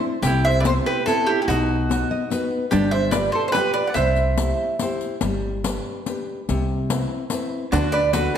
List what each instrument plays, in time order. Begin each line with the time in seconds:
Already playing: nylon-string guitar C4 D4 E4
0.22 upright bass C2, nylon-string guitar C3, mandolin G4, riq
0.27 hollow-body jazz guitar E4
0.45 hollow-body jazz guitar C5, mandolin E5
0.60 hollow-body jazz guitar G4 B4, mandolin D5
0.65 nylon-string guitar B3 C4 E4, mandolin C5, riq
0.86 hollow-body jazz guitar G4, mandolin B4
1.06 nylon-string guitar B3 C4 E4, hollow-body jazz guitar E4, mandolin A4, riq
1.27 hollow-body jazz guitar E4, mandolin G4
1.42 hollow-body jazz guitar E4, mandolin G4
1.48 upright bass B1, nylon-string guitar B2, hollow-body jazz guitar D#4, mandolin F#4, riq
1.89 nylon-string guitar B3 D#4 F#4, riq
2.11 nylon-string guitar D#5
2.30 nylon-string guitar B3 D#4 F#4 B4, riq
2.71 upright bass G1, nylon-string guitar G3, hollow-body jazz guitar D4, mandolin G4, riq
2.91 hollow-body jazz guitar C5, mandolin E5
3.11 nylon-string guitar F4 G4, hollow-body jazz guitar B4, mandolin D5, riq
3.16 nylon-string guitar B4
3.32 hollow-body jazz guitar A4, mandolin C5
3.48 hollow-body jazz guitar A4, mandolin C5
3.52 nylon-string guitar F4, hollow-body jazz guitar G4, mandolin B4, riq
3.56 nylon-string guitar G4 B4
3.74 hollow-body jazz guitar B4, mandolin D5
3.87 hollow-body jazz guitar D5, mandolin F#5
3.94 upright bass C2, nylon-string guitar C3, hollow-body jazz guitar C5, mandolin E5, riq
4.16 riq
4.38 nylon-string guitar E4 G4 C5, riq
4.79 nylon-string guitar E4 G4 C5, riq
5.01 riq
5.21 upright bass G1, nylon-string guitar G3, riq
5.64 nylon-string guitar D4 G4 B4, riq
6.06 nylon-string guitar D4 G4 B4, riq
6.49 upright bass C2, nylon-string guitar C3, riq
6.90 nylon-string guitar C4 E4 B4, riq
7.30 nylon-string guitar C4 E4 B4, riq
7.72 upright bass D2, nylon-string guitar D3, hollow-body jazz guitar D4, mandolin F#4, riq
7.92 hollow-body jazz guitar B4, mandolin D5
8.13 nylon-string guitar D4 F#4 A4, hollow-body jazz guitar F#4, mandolin B4, riq